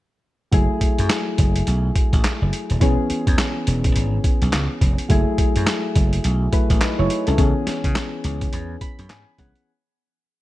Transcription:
0.52 0.66 F#1 loud
0.52 2.77 F#3 medium
0.52 2.77 A3 medium
0.52 2.77 E4 medium
0.52 2.78 G#4 medium
0.52 kick loud
0.52 closed hi-hat medium
0.81 muted slap bass stroke soft
0.81 kick medium
0.81 closed hi-hat medium
0.99 1.08 F#2 medium
0.99 closed hi-hat medium
1.10 snare loud
1.10 clap medium
1.10 closed hi-hat medium
1.38 1.61 F#1 medium
1.38 kick medium
1.38 closed hi-hat medium
1.56 closed hi-hat medium
1.67 1.89 B1 medium
1.67 closed hi-hat medium
1.96 kick loud
1.96 closed hi-hat medium
2.13 2.22 A1 medium
2.13 kick medium
2.13 closed hi-hat medium
2.24 muted slap bass stroke soft
2.24 snare medium
2.24 clap medium
2.24 closed hi-hat medium
2.42 2.50 F#1 medium
2.53 closed hi-hat medium
2.70 2.79 D#1 medium
2.70 closed hi-hat soft
2.80 2.95 E1 loud
2.80 5.05 E3 medium
2.80 5.06 B3 medium
2.80 5.06 C#4 medium
2.80 5.06 G#4 medium
2.80 kick loud
2.80 closed hi-hat medium
3.10 muted slap bass stroke soft
3.10 closed hi-hat medium
3.27 3.36 E2 loud
3.27 kick medium
3.27 closed hi-hat medium
3.38 snare loud
3.38 clap medium
3.38 closed hi-hat medium
3.67 3.90 E1 medium
3.67 closed hi-hat medium
3.84 kick medium
3.84 closed hi-hat medium
3.96 4.18 G#1 medium
3.96 closed hi-hat medium
4.24 kick medium
4.24 closed hi-hat medium
4.42 4.50 B1 medium
4.42 closed hi-hat soft
4.53 4.67 C#2 medium
4.53 snare loud
4.53 clap medium
4.53 closed hi-hat medium
4.81 4.95 F1 medium
4.81 kick medium
4.81 closed hi-hat medium
4.98 closed hi-hat medium
5.09 5.23 F#1 loud
5.09 6.49 F#3 medium
5.09 6.50 A3 medium
5.09 6.50 E4 medium
5.09 6.51 G#4 medium
5.09 kick loud
5.09 closed hi-hat medium
5.38 muted slap bass stroke soft
5.38 kick medium
5.38 closed hi-hat medium
5.56 5.65 F#2 medium
5.56 closed hi-hat medium
5.67 snare loud
5.67 clap medium
5.67 closed hi-hat medium
5.96 6.18 F#1 medium
5.96 kick medium
5.96 closed hi-hat medium
6.13 closed hi-hat medium
6.24 6.47 B1 medium
6.24 closed hi-hat medium
6.52 7.38 F#3 medium
6.52 7.38 A3 medium
6.52 6.81 E4 soft
6.52 6.80 B4 medium
6.52 kick medium
6.52 closed hi-hat medium
6.70 6.79 A1 medium
6.70 kick medium
6.70 closed hi-hat medium
6.81 6.98 D#4 medium
6.81 6.98 B4 medium
6.81 muted slap bass stroke soft
6.81 snare loud
6.81 clap medium
6.81 closed hi-hat medium
6.99 7.08 F#1 loud
6.99 7.26 E4 medium
6.99 7.26 C#5 medium
7.10 closed hi-hat medium
7.27 7.36 C2 medium
7.27 7.38 C#4 medium
7.27 7.54 A4 medium
7.27 closed hi-hat soft
7.37 7.52 C#2 loud
7.37 9.34 E3 medium
7.37 9.34 B3 medium
7.37 9.35 C#4 medium
7.37 9.35 G#4 medium
7.37 kick loud
7.37 closed hi-hat medium
7.67 muted slap bass stroke soft
7.67 snare medium
7.67 closed hi-hat medium
7.84 7.93 C#3 medium
7.84 kick medium
7.84 closed hi-hat medium
7.95 snare loud
7.95 clap medium
7.95 closed hi-hat medium
8.24 8.47 C#2 loud
8.24 closed hi-hat medium
8.41 kick medium
8.41 closed hi-hat medium
8.53 8.75 E2 loud
8.53 closed hi-hat medium
8.81 9.08 B5 medium
8.81 kick medium
8.81 closed hi-hat medium
8.99 9.08 F#2 medium
8.99 closed hi-hat medium
9.10 9.24 G#2 medium
9.10 9.36 G#5 medium
9.10 snare loud
9.10 clap medium
9.10 closed hi-hat medium
9.38 9.52 C2 medium
9.38 9.67 E3 medium
9.38 9.67 B3 medium
9.38 9.67 C#4 soft
9.38 9.67 G#4 medium
9.38 9.65 F#5 medium
9.38 kick medium
9.38 closed hi-hat medium
9.56 closed hi-hat soft

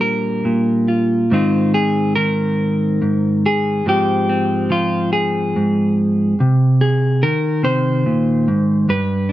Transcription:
0.00 0.43 A#2 medium
0.00 1.25 G3 medium
0.00 1.25 D4 medium
0.00 0.88 F4 soft
0.00 1.30 A#4 medium
0.45 1.30 A#2 medium
0.88 1.33 F4 soft
1.31 3.00 G#2 medium
1.31 2.15 D#3 soft
1.31 3.87 C4 medium
1.31 3.83 D#4 medium
1.31 1.74 F4 medium
1.74 2.15 G#4 medium
2.16 3.86 D#3 medium
2.16 3.43 A#4 loud
3.02 3.81 G#2 medium
3.46 3.87 G#4 loud
3.86 5.55 G#2 medium
3.86 4.69 F3 soft
3.86 6.39 G#3 soft
3.86 4.29 C4 medium
3.86 4.71 G4 medium
4.29 6.81 C4 soft
4.70 6.34 F3 medium
4.70 5.12 F4 medium
5.13 6.39 G#4 medium
5.56 6.34 G#2 medium
6.40 7.23 C3 medium
6.81 7.22 G#4 medium
7.23 8.89 D#3 medium
7.23 7.64 A#4 loud
7.63 8.05 C3 medium
7.63 8.89 C5 loud
8.06 8.47 A#2 medium
8.48 8.88 G#2 medium
8.89 9.32 G2 medium
8.89 9.32 B4 loud
9.29 9.32 D4 medium

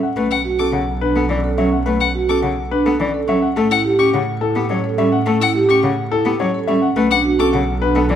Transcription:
0.03 0.21 F#5 medium
0.16 3.41 B1 medium
0.16 0.27 A3 medium
0.16 0.35 C#4 medium
0.16 0.35 B4 medium
0.31 0.42 F#5 medium
0.45 0.63 F#4 medium
0.59 0.78 C#4 medium
0.59 0.78 A4 medium
0.59 0.70 D6 medium
0.72 0.83 C#3 medium
0.72 0.92 F#5 medium
1.01 1.20 D4 medium
1.01 1.20 B4 medium
1.16 1.26 B3 medium
1.16 1.34 A4 medium
1.29 1.40 E3 medium
1.29 1.48 C#4 medium
1.29 1.48 D5 medium
1.44 1.63 A4 medium
1.58 1.69 F#3 medium
1.58 1.77 C#4 medium
1.58 1.77 E5 medium
1.72 1.91 F#5 medium
1.86 1.97 A3 medium
1.86 2.05 C#4 medium
1.86 2.05 B4 medium
2.00 2.11 F#5 medium
2.15 2.33 F#4 medium
2.29 2.47 C#4 medium
2.29 2.48 A4 medium
2.29 2.40 D6 medium
2.42 2.54 C#3 medium
2.42 2.61 F#5 medium
2.71 2.90 D4 medium
2.71 2.90 B4 medium
2.85 2.97 B3 medium
2.85 3.04 A4 medium
3.00 3.11 E3 medium
3.00 3.18 C#4 medium
3.00 3.18 D5 medium
3.14 3.32 A4 medium
3.28 3.39 F#3 medium
3.28 3.47 C#4 medium
3.28 3.47 E5 medium
3.42 3.61 F#5 medium
3.56 6.81 A2 medium
3.56 3.67 A3 medium
3.56 3.75 C#4 medium
3.56 3.75 A4 medium
3.70 3.89 E4 medium
3.70 3.82 F#5 medium
3.85 4.03 G4 medium
3.99 4.17 C#4 medium
3.99 4.17 G4 medium
3.99 4.10 C#6 medium
4.13 4.24 C#3 medium
4.13 4.32 F#5 medium
4.41 4.60 E4 medium
4.41 4.60 A4 medium
4.56 4.66 B3 medium
4.56 4.74 G4 medium
4.70 4.80 F#3 medium
4.70 4.88 C#4 medium
4.70 4.88 C#5 medium
4.84 5.02 A4 medium
4.98 5.09 G3 medium
4.98 5.17 C#4 medium
4.98 5.17 E5 medium
5.12 5.31 F#5 medium
5.26 5.37 A3 medium
5.26 5.45 C#4 medium
5.26 5.45 A4 medium
5.40 5.59 E4 medium
5.40 5.52 F#5 medium
5.55 5.73 G4 medium
5.69 5.87 C#4 medium
5.69 5.87 G4 medium
5.69 5.80 C#6 medium
5.83 5.94 C#3 medium
5.83 6.02 F#5 medium
6.11 6.30 E4 medium
6.11 6.30 A4 medium
6.25 6.36 B3 medium
6.25 6.44 G4 medium
6.40 6.50 F#3 medium
6.40 6.58 C#4 medium
6.40 6.58 C#5 medium
6.54 6.72 A4 medium
6.67 6.79 G3 medium
6.67 6.86 C#4 medium
6.67 6.86 E5 medium
6.82 7.00 F#5 medium
6.96 8.16 B1 medium
6.96 7.07 A3 medium
6.96 7.15 C#4 medium
6.96 7.15 B4 medium
7.10 7.29 D4 medium
7.10 7.21 F#5 medium
7.25 7.43 F#4 medium
7.39 7.57 C#4 medium
7.39 7.57 A4 medium
7.39 7.50 D6 medium
7.53 7.64 C#3 medium
7.53 7.71 F#5 medium
7.81 8.00 D4 medium
7.81 8.00 B4 medium
7.95 8.06 B3 medium
7.95 8.14 A4 medium
8.09 8.16 E3 medium
8.09 8.16 C#4 medium
8.09 8.16 D5 medium

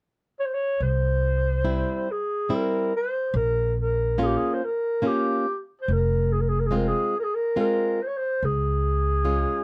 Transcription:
0.39 0.47 C#5 medium
0.46 0.56 C5 medium
0.54 0.81 C#5 medium
0.80 1.82 C2 medium
0.80 2.13 C5 loud
1.65 2.08 G3 medium
1.65 2.07 C4 soft
1.65 2.07 E4 medium
2.11 2.56 G#4 medium
2.49 2.92 G3 soft
2.49 2.92 C4 soft
2.49 2.92 E4 medium
2.54 2.94 A#4 medium
2.96 3.34 C5 medium
3.34 4.35 A#1 loud
3.34 3.74 A#4 medium
3.80 4.24 A#4 medium
4.18 4.61 A#3 soft
4.18 4.61 C#4 soft
4.18 4.61 F4 medium
4.23 4.38 G4 medium
4.23 4.28 G#4 medium
4.37 4.55 G#4 medium
4.54 4.66 C5 medium
4.64 5.08 A#4 medium
5.02 5.45 A#3 medium
5.02 5.46 C#4 medium
5.02 5.45 F4 medium
5.07 5.60 G4 medium
5.82 5.94 C5 medium
5.88 6.90 F1 medium
5.92 6.33 A#4 medium
6.32 6.42 G#4 medium
6.40 6.50 A#4 medium
6.49 6.61 G#4 medium
6.59 6.67 A#4 medium
6.66 6.77 G#4 medium
6.71 7.14 G#3 medium
6.71 7.14 C4 medium
6.71 7.14 F4 medium
6.76 6.89 A#4 medium
6.87 7.17 G#4 medium
7.19 7.25 A#4 medium
7.23 7.36 G#4 medium
7.35 7.59 A#4 medium
7.56 7.99 G#3 medium
7.56 7.99 C4 soft
7.56 7.99 F4 medium
7.56 8.04 A#4 medium
8.02 8.09 C5 medium
8.07 8.18 C#5 medium
8.17 8.46 C5 medium
8.43 9.44 C#2 medium
8.43 9.64 G#4 medium
9.25 9.64 G#3 medium
9.25 9.64 C#4 soft
9.25 9.64 F4 medium

